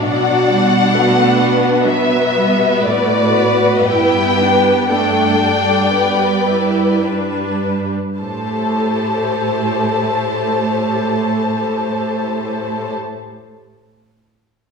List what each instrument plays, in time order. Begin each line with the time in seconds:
0.03 cello section B2, viola section F#3 D4, violin section F#4 D5 F#5
0.50 viola section G3
0.95 viola section A3, violin section F#4 B4
1.40 viola section B3
1.86 viola section F#3 B3, violin section B4 E5
2.35 viola section G3
2.81 cello section A2, viola section A3, violin section F#4 D5
3.35 viola section B3
3.86 cello section G2, viola section B3 E4, violin section G4 G5
4.41 viola section D4
4.89 viola section A3 D4, violin section A4 D5 G5
5.43 viola section G3
5.95 viola section B3, violin section B4
6.49 viola section E4
7.04 viola section G3 D4, violin section B4
8.19 cello section A2, viola section A3 G4, violin section A4 C5 A5